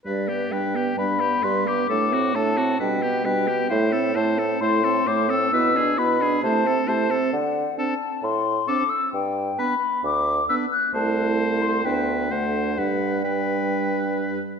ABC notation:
X:1
M:4/4
L:1/8
Q:1/4=132
K:G
V:1 name="Flute"
d2 g2 b2 c' d'- | d'2 a2 g2 g2 | e2 a2 c'2 d' e'- | e'2 b2 a2 a2 |
f2 a2 c'2 d' e' | g2 b2 d'2 e' f' | a3 c' g2 f2 | f2 g4 z2 |]
V:2 name="Oboe"
B G B G B G B G | A F A F B G B G | c A c A c A c A | B ^G B G c A c A |
z2 A2 z2 A2 | z2 B2 z2 B2 | c4 B2 c2 | B2 B4- B z |]
V:3 name="Clarinet"
D B, D B, D B, D B, | D C D C D B, D B, | E C E C E C E C | E D E D E C E C |
z2 D2 z2 D2 | z2 D2 z2 D2 | E4 D2 D2 | D2 D4- D z |]
V:4 name="French horn"
G, B, G, B, G, B, G, B, | A, C A, C G, B, G, B, | A, C A, C A, C A, C | B, D B, D A, C A, C |
z2 C2 z2 C2 | z2 B,2 z2 B,2 | A,4 B,2 A,2 | G,2 G,4- G, z |]
V:5 name="Bassoon" clef=bass
G,,2 G,,2 G,,2 G,,2 | A,,2 A,,2 B,,2 B,,2 | A,,2 A,,2 A,,2 A,,2 | B,,2 B,,2 C,2 C,2 |
D,2 z2 A,,2 z2 | G,,2 z2 D,,2 z2 | C,,4 D,,2 D,,2 | G,,6- G,, z |]